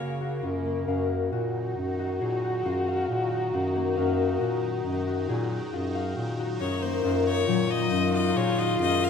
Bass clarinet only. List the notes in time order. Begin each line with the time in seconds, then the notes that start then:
Already playing: C#3
0.43 F#2
0.88 F#2
1.32 A#2
1.77 F#2
2.21 A#2
2.65 F#2
3.09 A#2
3.54 F#2
3.97 F#2
4.40 A#2
4.85 F#2
5.29 A#2
5.73 F#2
6.16 A#2
6.60 F#2
7.04 F#2
7.48 A#2
7.92 F#2
8.35 A#2
8.79 F#2